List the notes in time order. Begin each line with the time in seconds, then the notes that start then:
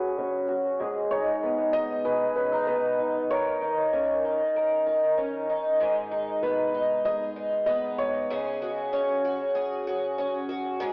Already playing: C#3 C#4 F#4 G#4 B4
0.18 C#4
0.49 F#4
0.80 G#2 G#4
1.11 D#4 C#5
1.43 B3
1.73 D#4 D#5
2.05 G#4 B4
2.36 C#4 B4
2.52 D#4
2.67 B3 B4
2.99 D#4
3.30 D#3 A#4 C#5
3.62 D#4
3.93 C#4
4.25 D#4
4.56 A#4
4.87 D#4
5.17 C#4
5.49 D#4
5.80 G#2 G#4
6.11 D#4
6.43 B3 B4
6.74 D#4
7.05 G#4 D#5
7.36 D#4
7.66 B3 D#5
7.98 D#4 C#5
8.30 C#3 G#4
8.62 F#4
8.93 C#4
9.25 F#4
9.55 G#4
9.87 F#4
10.18 C#4
10.49 F#4
10.80 G#2 G#4